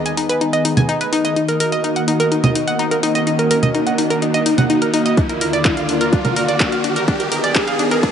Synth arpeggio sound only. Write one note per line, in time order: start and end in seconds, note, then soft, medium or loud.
0.06 0.13 G#5 medium
0.17 0.29 D#4 medium
0.29 0.37 B4 loud
0.41 0.46 D#4 medium
0.53 0.64 D#5 loud
0.65 0.73 D#4 medium
0.77 0.85 G#5 medium
0.89 0.97 D#4 loud
1.01 1.08 B4 medium
1.13 1.24 D#4 loud
1.25 1.32 D#5 medium
1.36 1.41 D#4 medium
1.49 1.59 A#4 medium
1.60 1.65 A#4 loud
1.72 1.80 D#5 loud
1.84 1.92 D#4 medium
1.96 2.04 F#5 medium
2.08 2.19 D#4 medium
2.20 2.27 A#4 loud
2.32 2.36 D#4 medium
2.44 2.55 D#5 loud
2.55 2.63 D#4 medium
2.68 2.75 F#5 medium
2.79 2.87 D#4 loud
2.91 2.99 A#4 medium
3.03 3.15 D#4 loud
3.15 3.23 D#5 loud
3.27 3.32 D#4 medium
3.39 3.50 A#4 medium
3.51 3.55 A#4 loud
3.63 3.70 D#5 loud
3.75 3.82 D#4 medium
3.87 3.94 F#5 medium
3.98 4.10 D#4 medium
4.10 4.18 A#4 loud
4.22 4.27 D#4 medium
4.34 4.45 D#5 loud
4.46 4.54 D#4 medium
4.58 4.66 F#5 loud
4.70 4.78 D#4 loud
4.82 4.89 A#4 medium
4.94 5.05 D#4 loud
5.06 5.13 D#5 loud
5.17 5.22 D4 medium
5.30 5.40 A#4 medium
5.41 5.46 A#4 medium
5.53 5.61 D5 loud
5.65 5.73 D4 medium
5.77 5.85 F5 medium
5.89 6.00 D4 medium
6.01 6.08 A#4 medium
6.13 6.17 D4 medium
6.25 6.35 A#4 medium
6.37 6.41 A#4 loud
6.49 6.56 D5 medium
6.60 6.68 D4 medium
6.72 6.80 F5 medium
6.84 6.96 D4 medium
6.96 7.04 A#4 medium
7.08 7.13 D4 medium
7.20 7.31 A#4 medium
7.32 7.36 A#4 medium
7.44 7.51 D5 medium
7.56 7.63 D4 medium
7.68 7.75 F5 medium
7.79 7.91 D4 medium
7.91 7.99 A#4 medium
8.03 8.08 D4 medium